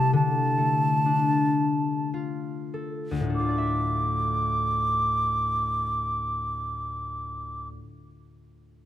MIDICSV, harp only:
0, 0, Header, 1, 2, 480
1, 0, Start_track
1, 0, Key_signature, -1, "minor"
1, 0, Tempo, 917431
1, 66, Time_signature, 3, 2, 24, 8
1, 550, Tempo, 1081081
1, 1030, Tempo, 1190476
1, 2470, Tempo, 1226994
1, 3703, End_track
2, 0, Start_track
2, 0, Title_t, "Harp"
2, 0, Program_c, 0, 46
2, 0, Note_on_c, 0, 48, 61
2, 0, Note_on_c, 0, 55, 46
2, 0, Note_on_c, 0, 57, 46
2, 0, Note_on_c, 0, 64, 46
2, 0, Note_on_c, 0, 67, 42
2, 69, Note_on_c, 0, 50, 52
2, 92, Note_off_c, 0, 48, 0
2, 93, Note_off_c, 0, 55, 0
2, 302, Note_off_c, 0, 57, 0
2, 304, Note_on_c, 0, 57, 36
2, 551, Note_on_c, 0, 62, 38
2, 935, Note_off_c, 0, 64, 0
2, 995, Note_off_c, 0, 67, 0
2, 1032, Note_on_c, 0, 65, 34
2, 1274, Note_on_c, 0, 69, 33
2, 1424, Note_on_c, 0, 38, 34
2, 1463, Note_on_c, 0, 45, 34
2, 1498, Note_off_c, 0, 57, 0
2, 1500, Note_on_c, 0, 57, 34
2, 1533, Note_off_c, 0, 50, 0
2, 1538, Note_off_c, 0, 65, 0
2, 1539, Note_on_c, 0, 65, 34
2, 1576, Note_on_c, 0, 74, 32
2, 1613, Note_on_c, 0, 76, 39
2, 1724, Note_off_c, 0, 62, 0
2, 2159, Note_off_c, 0, 69, 0
2, 3271, Note_off_c, 0, 38, 0
2, 3308, Note_off_c, 0, 45, 0
2, 3344, Note_off_c, 0, 57, 0
2, 3382, Note_off_c, 0, 65, 0
2, 3418, Note_off_c, 0, 74, 0
2, 3454, Note_off_c, 0, 76, 0
2, 3703, End_track
0, 0, End_of_file